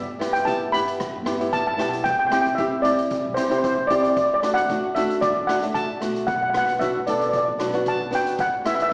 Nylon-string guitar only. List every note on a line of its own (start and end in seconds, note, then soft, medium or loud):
0.19 0.37 B3 medium
0.19 0.37 E4 medium
0.19 0.38 G4 medium
0.45 0.63 B3 medium
0.45 0.64 E4 medium
0.45 0.64 G4 medium
0.72 1.05 B3 medium
0.72 1.05 E4 medium
0.72 1.06 G4 medium
1.25 1.35 B3 medium
1.25 1.35 E4 medium
1.25 1.35 G4 medium
1.39 1.64 B3 medium
1.39 1.64 E4 medium
1.39 1.65 G4 medium
1.77 2.05 B3 medium
1.77 2.05 E4 medium
1.77 2.06 G4 medium
2.30 2.48 C4 medium
2.30 2.48 E4 medium
2.30 2.49 G4 medium
2.58 2.75 C4 medium
2.58 2.75 E4 medium
2.58 2.76 G4 medium
2.83 3.16 C4 medium
2.83 3.17 E4 medium
2.83 3.17 G4 medium
3.36 3.45 C4 medium
3.36 3.46 E4 medium
3.36 3.46 G4 medium
3.49 3.74 C4 medium
3.49 3.74 E4 medium
3.49 3.75 G4 medium
3.89 4.16 C4 medium
3.89 4.17 E4 medium
3.89 4.17 G4 medium
4.42 4.59 A3 medium
4.42 4.60 D4 medium
4.42 4.60 F#4 medium
4.69 4.86 A3 medium
4.69 4.87 D4 medium
4.69 4.87 F#4 medium
4.96 5.28 A3 medium
4.96 5.28 D4 medium
4.96 5.29 F#4 medium
5.47 5.57 A3 medium
5.47 5.57 D4 medium
5.47 5.58 F#4 medium
5.62 5.86 A3 medium
5.62 5.87 D4 medium
5.62 5.87 F#4 medium
6.00 6.27 A3 medium
6.00 6.28 D4 medium
6.00 6.28 F#4 medium
6.54 6.70 B3 medium
6.54 6.71 D4 medium
6.54 6.71 F#4 medium
6.79 6.97 B3 medium
6.79 6.97 D4 medium
6.79 6.98 F#4 medium
7.07 7.39 B3 medium
7.07 7.39 D4 medium
7.07 7.40 A4 medium
7.58 7.67 B3 medium
7.58 7.68 D4 medium
7.58 7.68 F#4 medium
7.73 7.97 B3 medium
7.73 7.97 D4 medium
7.73 7.98 F#4 medium
8.11 8.38 B3 medium
8.11 8.38 D4 medium
8.11 8.39 F#4 medium
8.64 8.81 B3 medium
8.64 8.82 E4 medium
8.64 8.82 G#4 medium